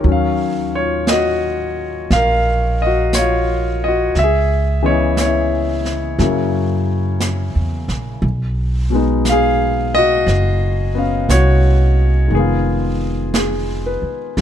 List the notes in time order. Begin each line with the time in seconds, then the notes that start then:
Already playing: C#5
0.01 D#2 D#3 F#3, brush sweep
0.08 C#4 F5
0.75 F4 C#5
1.07 D#5, brush sweep, snare, hi-hat pedal
1.12 F#4
2.10 A#1 F5, brush sweep, snare
2.15 A#4
2.82 D#5
2.87 F#4
3.13 C#5, brush sweep, snare, hi-hat pedal
3.19 F4
3.84 D#5
3.88 F#4
4.15 C#2 E5, brush sweep, snare
4.24 G#4
4.82 C#3 E3 B3 C#5 D#5
4.90 E4
5.17 C#5, brush sweep, snare, hi-hat pedal
5.26 E4
5.85 snare
6.19 F#2 C#3 F#3 A#3 E4, brush sweep, snare
7.20 brush sweep, snare, hi-hat pedal
7.55 E2
7.88 A#1, snare
8.22 B1, brush sweep
8.90 B2 G#3 B3
8.95 D#4
9.25 brush sweep, snare, hi-hat pedal
9.29 G#4 F5
9.95 F#4 D#5
10.27 F#1, brush sweep, snare
10.95 B3 C#4 F5
11.29 C2 F#4 C#5, brush sweep, snare, hi-hat pedal
12.28 F1 D#3 G#3, brush sweep
12.35 B3 G#4
12.39 F4
13.34 G#4, brush sweep, snare, hi-hat pedal
13.86 B4
14.02 muted upright bass stroke
14.37 A#1 D3 G#3, brush sweep, snare